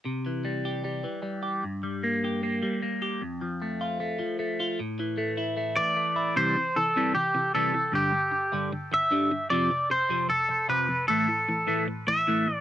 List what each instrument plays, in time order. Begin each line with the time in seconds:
0.05 overdriven electric guitar C3
0.26 overdriven electric guitar E3
0.45 overdriven electric guitar G3
0.65 overdriven electric guitar G4
0.85 overdriven electric guitar G3
1.04 overdriven electric guitar E3
1.23 overdriven electric guitar G3
1.43 overdriven electric guitar G4
1.64 overdriven electric guitar G2
1.83 overdriven electric guitar G3
2.03 overdriven electric guitar A#3
2.24 overdriven electric guitar G4
2.43 overdriven electric guitar A#3
2.63 overdriven electric guitar G3
2.82 overdriven electric guitar A#3
3.02 overdriven electric guitar G4
3.21 overdriven electric guitar F2
3.41 overdriven electric guitar F3
3.62 overdriven electric guitar A3
3.81 overdriven electric guitar F4
4.00 overdriven electric guitar A3
4.19 overdriven electric guitar F3
4.39 overdriven electric guitar A3
4.60 overdriven electric guitar F4
4.79 overdriven electric guitar A2
4.99 overdriven electric guitar E3
5.17 overdriven electric guitar A3
5.37 overdriven electric guitar E4
5.57 overdriven electric guitar A3
5.76 overdriven electric guitar E3, clean electric guitar D5
5.96 overdriven electric guitar A3
6.16 overdriven electric guitar E4
6.36 overdriven electric guitar C3 E3 G3, clean electric guitar C5
6.57 overdriven electric guitar C3 E3
6.76 overdriven electric guitar C3 E3, clean electric guitar A4
6.96 overdriven electric guitar C3 E3 G3
7.15 overdriven electric guitar C3 E3, clean electric guitar G4
7.34 overdriven electric guitar C3 E3
7.54 overdriven electric guitar C3 E3 G3, clean electric guitar A4
7.73 overdriven electric guitar C3 E3
7.92 overdriven electric guitar G2 D3 G3, clean electric guitar G4
8.12 overdriven electric guitar G2 D3
8.32 overdriven electric guitar G2 D3
8.52 overdriven electric guitar G2 D3 G3
8.72 overdriven electric guitar G2 D3
8.92 overdriven electric guitar G2 D3, clean electric guitar E5
9.11 overdriven electric guitar G2 D3 G3
9.31 overdriven electric guitar G2 D3
9.50 overdriven electric guitar F2 C3 F3, clean electric guitar D5
9.71 overdriven electric guitar F2 C3
9.90 overdriven electric guitar F2 C3, clean electric guitar C5
10.09 overdriven electric guitar F2 C3 F3
10.28 overdriven electric guitar F2 C3, clean electric guitar A4
10.48 overdriven electric guitar F2 C3
10.68 overdriven electric guitar F2 C3 F3, clean electric guitar B4
10.89 overdriven electric guitar F2 C3
11.08 overdriven electric guitar A2 E3 A3, clean electric guitar A4
11.28 overdriven electric guitar A2 E3
11.48 overdriven electric guitar A2 E3
11.67 overdriven electric guitar A2 E3 A3
11.88 overdriven electric guitar A2 E3
12.07 overdriven electric guitar A2 E3, clean electric guitar E5
12.27 overdriven electric guitar A2 E3 A3
12.48 overdriven electric guitar A2 E3
12.55 clean electric guitar D5